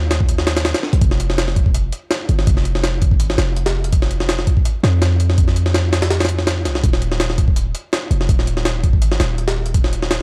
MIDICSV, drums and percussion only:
0, 0, Header, 1, 2, 480
1, 0, Start_track
1, 0, Key_signature, -4, "minor"
1, 0, Tempo, 363636
1, 1341, Time_signature, 4, 2, 24, 8
1, 13492, End_track
2, 0, Start_track
2, 0, Title_t, "Drums"
2, 141, Note_on_c, 9, 38, 101
2, 141, Note_on_c, 9, 42, 80
2, 270, Note_on_c, 9, 36, 97
2, 273, Note_off_c, 9, 38, 0
2, 273, Note_off_c, 9, 42, 0
2, 377, Note_on_c, 9, 42, 90
2, 402, Note_off_c, 9, 36, 0
2, 507, Note_on_c, 9, 38, 60
2, 509, Note_off_c, 9, 42, 0
2, 618, Note_off_c, 9, 38, 0
2, 618, Note_on_c, 9, 38, 112
2, 618, Note_on_c, 9, 42, 82
2, 746, Note_off_c, 9, 38, 0
2, 746, Note_off_c, 9, 42, 0
2, 746, Note_on_c, 9, 38, 103
2, 746, Note_on_c, 9, 42, 85
2, 856, Note_off_c, 9, 38, 0
2, 856, Note_off_c, 9, 42, 0
2, 856, Note_on_c, 9, 38, 104
2, 856, Note_on_c, 9, 42, 81
2, 983, Note_off_c, 9, 38, 0
2, 983, Note_off_c, 9, 42, 0
2, 983, Note_on_c, 9, 38, 99
2, 983, Note_on_c, 9, 42, 77
2, 1099, Note_off_c, 9, 38, 0
2, 1099, Note_on_c, 9, 38, 47
2, 1115, Note_off_c, 9, 42, 0
2, 1226, Note_on_c, 9, 42, 62
2, 1231, Note_off_c, 9, 38, 0
2, 1339, Note_off_c, 9, 42, 0
2, 1339, Note_on_c, 9, 42, 89
2, 1341, Note_on_c, 9, 36, 117
2, 1469, Note_on_c, 9, 38, 51
2, 1471, Note_off_c, 9, 42, 0
2, 1473, Note_off_c, 9, 36, 0
2, 1583, Note_on_c, 9, 42, 69
2, 1601, Note_off_c, 9, 38, 0
2, 1712, Note_on_c, 9, 38, 57
2, 1715, Note_off_c, 9, 42, 0
2, 1823, Note_off_c, 9, 38, 0
2, 1823, Note_on_c, 9, 38, 121
2, 1823, Note_on_c, 9, 42, 90
2, 1952, Note_off_c, 9, 38, 0
2, 1952, Note_on_c, 9, 38, 45
2, 1955, Note_off_c, 9, 42, 0
2, 2062, Note_on_c, 9, 36, 97
2, 2063, Note_on_c, 9, 42, 67
2, 2084, Note_off_c, 9, 38, 0
2, 2191, Note_off_c, 9, 36, 0
2, 2191, Note_on_c, 9, 36, 97
2, 2195, Note_off_c, 9, 42, 0
2, 2302, Note_on_c, 9, 42, 92
2, 2323, Note_off_c, 9, 36, 0
2, 2434, Note_off_c, 9, 42, 0
2, 2540, Note_on_c, 9, 42, 76
2, 2672, Note_off_c, 9, 42, 0
2, 2780, Note_on_c, 9, 38, 110
2, 2780, Note_on_c, 9, 42, 84
2, 2912, Note_off_c, 9, 38, 0
2, 2912, Note_off_c, 9, 42, 0
2, 3021, Note_on_c, 9, 42, 66
2, 3151, Note_on_c, 9, 38, 48
2, 3153, Note_off_c, 9, 42, 0
2, 3261, Note_on_c, 9, 42, 91
2, 3262, Note_on_c, 9, 36, 114
2, 3283, Note_off_c, 9, 38, 0
2, 3391, Note_on_c, 9, 38, 42
2, 3393, Note_off_c, 9, 42, 0
2, 3394, Note_off_c, 9, 36, 0
2, 3501, Note_on_c, 9, 42, 67
2, 3523, Note_off_c, 9, 38, 0
2, 3632, Note_on_c, 9, 38, 50
2, 3633, Note_off_c, 9, 42, 0
2, 3743, Note_off_c, 9, 38, 0
2, 3743, Note_on_c, 9, 38, 114
2, 3743, Note_on_c, 9, 42, 92
2, 3875, Note_off_c, 9, 38, 0
2, 3875, Note_off_c, 9, 42, 0
2, 3982, Note_on_c, 9, 36, 99
2, 3982, Note_on_c, 9, 42, 69
2, 4111, Note_off_c, 9, 36, 0
2, 4111, Note_on_c, 9, 36, 97
2, 4114, Note_off_c, 9, 42, 0
2, 4220, Note_on_c, 9, 42, 94
2, 4243, Note_off_c, 9, 36, 0
2, 4352, Note_off_c, 9, 42, 0
2, 4354, Note_on_c, 9, 38, 60
2, 4462, Note_off_c, 9, 38, 0
2, 4462, Note_on_c, 9, 38, 113
2, 4462, Note_on_c, 9, 42, 83
2, 4594, Note_off_c, 9, 38, 0
2, 4594, Note_off_c, 9, 42, 0
2, 4705, Note_on_c, 9, 42, 60
2, 4832, Note_off_c, 9, 42, 0
2, 4832, Note_on_c, 9, 38, 102
2, 4832, Note_on_c, 9, 42, 83
2, 4964, Note_off_c, 9, 38, 0
2, 4964, Note_off_c, 9, 42, 0
2, 5072, Note_on_c, 9, 42, 62
2, 5181, Note_off_c, 9, 42, 0
2, 5181, Note_on_c, 9, 36, 117
2, 5181, Note_on_c, 9, 42, 89
2, 5309, Note_on_c, 9, 38, 56
2, 5313, Note_off_c, 9, 36, 0
2, 5313, Note_off_c, 9, 42, 0
2, 5421, Note_on_c, 9, 42, 66
2, 5441, Note_off_c, 9, 38, 0
2, 5548, Note_on_c, 9, 38, 56
2, 5553, Note_off_c, 9, 42, 0
2, 5660, Note_off_c, 9, 38, 0
2, 5660, Note_on_c, 9, 38, 116
2, 5660, Note_on_c, 9, 42, 86
2, 5791, Note_off_c, 9, 38, 0
2, 5791, Note_on_c, 9, 38, 45
2, 5792, Note_off_c, 9, 42, 0
2, 5901, Note_on_c, 9, 42, 71
2, 5902, Note_on_c, 9, 36, 94
2, 5923, Note_off_c, 9, 38, 0
2, 6030, Note_off_c, 9, 36, 0
2, 6030, Note_on_c, 9, 36, 99
2, 6033, Note_off_c, 9, 42, 0
2, 6142, Note_on_c, 9, 42, 89
2, 6162, Note_off_c, 9, 36, 0
2, 6274, Note_off_c, 9, 42, 0
2, 6384, Note_on_c, 9, 38, 105
2, 6384, Note_on_c, 9, 42, 82
2, 6516, Note_off_c, 9, 38, 0
2, 6516, Note_off_c, 9, 42, 0
2, 6623, Note_on_c, 9, 38, 108
2, 6623, Note_on_c, 9, 42, 88
2, 6755, Note_off_c, 9, 38, 0
2, 6755, Note_off_c, 9, 42, 0
2, 6862, Note_on_c, 9, 42, 69
2, 6991, Note_on_c, 9, 38, 44
2, 6994, Note_off_c, 9, 42, 0
2, 7099, Note_on_c, 9, 42, 88
2, 7100, Note_on_c, 9, 36, 116
2, 7123, Note_off_c, 9, 38, 0
2, 7229, Note_on_c, 9, 38, 39
2, 7231, Note_off_c, 9, 42, 0
2, 7232, Note_off_c, 9, 36, 0
2, 7341, Note_on_c, 9, 42, 65
2, 7361, Note_off_c, 9, 38, 0
2, 7470, Note_on_c, 9, 38, 51
2, 7473, Note_off_c, 9, 42, 0
2, 7582, Note_off_c, 9, 38, 0
2, 7582, Note_on_c, 9, 38, 118
2, 7582, Note_on_c, 9, 42, 88
2, 7714, Note_off_c, 9, 38, 0
2, 7714, Note_off_c, 9, 42, 0
2, 7823, Note_on_c, 9, 38, 110
2, 7823, Note_on_c, 9, 42, 80
2, 7949, Note_off_c, 9, 38, 0
2, 7949, Note_off_c, 9, 42, 0
2, 7949, Note_on_c, 9, 38, 107
2, 7949, Note_on_c, 9, 42, 77
2, 8059, Note_off_c, 9, 38, 0
2, 8059, Note_off_c, 9, 42, 0
2, 8059, Note_on_c, 9, 38, 109
2, 8059, Note_on_c, 9, 42, 84
2, 8190, Note_off_c, 9, 38, 0
2, 8190, Note_off_c, 9, 42, 0
2, 8190, Note_on_c, 9, 38, 97
2, 8190, Note_on_c, 9, 42, 67
2, 8247, Note_off_c, 9, 38, 0
2, 8247, Note_off_c, 9, 42, 0
2, 8247, Note_on_c, 9, 38, 94
2, 8247, Note_on_c, 9, 42, 69
2, 8299, Note_off_c, 9, 42, 0
2, 8299, Note_on_c, 9, 42, 71
2, 8379, Note_off_c, 9, 38, 0
2, 8429, Note_on_c, 9, 38, 43
2, 8431, Note_off_c, 9, 42, 0
2, 8540, Note_off_c, 9, 38, 0
2, 8540, Note_on_c, 9, 38, 114
2, 8540, Note_on_c, 9, 42, 87
2, 8672, Note_off_c, 9, 38, 0
2, 8672, Note_off_c, 9, 42, 0
2, 8783, Note_on_c, 9, 38, 55
2, 8783, Note_on_c, 9, 42, 69
2, 8913, Note_off_c, 9, 38, 0
2, 8913, Note_on_c, 9, 38, 56
2, 8915, Note_off_c, 9, 42, 0
2, 9022, Note_on_c, 9, 36, 107
2, 9023, Note_on_c, 9, 42, 86
2, 9045, Note_off_c, 9, 38, 0
2, 9152, Note_on_c, 9, 38, 55
2, 9154, Note_off_c, 9, 36, 0
2, 9155, Note_off_c, 9, 42, 0
2, 9264, Note_on_c, 9, 42, 68
2, 9284, Note_off_c, 9, 38, 0
2, 9393, Note_on_c, 9, 38, 56
2, 9396, Note_off_c, 9, 42, 0
2, 9502, Note_off_c, 9, 38, 0
2, 9502, Note_on_c, 9, 38, 121
2, 9502, Note_on_c, 9, 42, 88
2, 9632, Note_off_c, 9, 38, 0
2, 9632, Note_on_c, 9, 38, 46
2, 9634, Note_off_c, 9, 42, 0
2, 9741, Note_on_c, 9, 36, 93
2, 9741, Note_on_c, 9, 42, 69
2, 9764, Note_off_c, 9, 38, 0
2, 9870, Note_off_c, 9, 36, 0
2, 9870, Note_on_c, 9, 36, 100
2, 9873, Note_off_c, 9, 42, 0
2, 9982, Note_on_c, 9, 42, 93
2, 10002, Note_off_c, 9, 36, 0
2, 10114, Note_off_c, 9, 42, 0
2, 10225, Note_on_c, 9, 42, 68
2, 10357, Note_off_c, 9, 42, 0
2, 10465, Note_on_c, 9, 38, 116
2, 10465, Note_on_c, 9, 42, 89
2, 10597, Note_off_c, 9, 38, 0
2, 10597, Note_off_c, 9, 42, 0
2, 10704, Note_on_c, 9, 42, 68
2, 10834, Note_on_c, 9, 38, 46
2, 10836, Note_off_c, 9, 42, 0
2, 10943, Note_on_c, 9, 36, 111
2, 10944, Note_on_c, 9, 42, 88
2, 10966, Note_off_c, 9, 38, 0
2, 11075, Note_off_c, 9, 36, 0
2, 11075, Note_on_c, 9, 38, 40
2, 11076, Note_off_c, 9, 42, 0
2, 11184, Note_on_c, 9, 42, 68
2, 11207, Note_off_c, 9, 38, 0
2, 11311, Note_on_c, 9, 38, 50
2, 11316, Note_off_c, 9, 42, 0
2, 11421, Note_off_c, 9, 38, 0
2, 11421, Note_on_c, 9, 38, 116
2, 11421, Note_on_c, 9, 42, 87
2, 11553, Note_off_c, 9, 38, 0
2, 11553, Note_off_c, 9, 42, 0
2, 11663, Note_on_c, 9, 36, 95
2, 11663, Note_on_c, 9, 42, 71
2, 11791, Note_off_c, 9, 36, 0
2, 11791, Note_on_c, 9, 36, 99
2, 11795, Note_off_c, 9, 42, 0
2, 11902, Note_on_c, 9, 42, 94
2, 11923, Note_off_c, 9, 36, 0
2, 12032, Note_on_c, 9, 38, 61
2, 12034, Note_off_c, 9, 42, 0
2, 12142, Note_off_c, 9, 38, 0
2, 12142, Note_on_c, 9, 38, 112
2, 12142, Note_on_c, 9, 42, 86
2, 12274, Note_off_c, 9, 38, 0
2, 12274, Note_off_c, 9, 42, 0
2, 12384, Note_on_c, 9, 42, 57
2, 12509, Note_off_c, 9, 42, 0
2, 12509, Note_on_c, 9, 38, 102
2, 12509, Note_on_c, 9, 42, 80
2, 12641, Note_off_c, 9, 38, 0
2, 12641, Note_off_c, 9, 42, 0
2, 12747, Note_on_c, 9, 42, 61
2, 12862, Note_off_c, 9, 42, 0
2, 12862, Note_on_c, 9, 36, 110
2, 12862, Note_on_c, 9, 42, 95
2, 12992, Note_on_c, 9, 38, 54
2, 12994, Note_off_c, 9, 36, 0
2, 12994, Note_off_c, 9, 42, 0
2, 13105, Note_on_c, 9, 42, 69
2, 13124, Note_off_c, 9, 38, 0
2, 13233, Note_on_c, 9, 38, 56
2, 13237, Note_off_c, 9, 42, 0
2, 13341, Note_off_c, 9, 38, 0
2, 13341, Note_on_c, 9, 38, 118
2, 13341, Note_on_c, 9, 42, 91
2, 13473, Note_off_c, 9, 38, 0
2, 13473, Note_off_c, 9, 42, 0
2, 13492, End_track
0, 0, End_of_file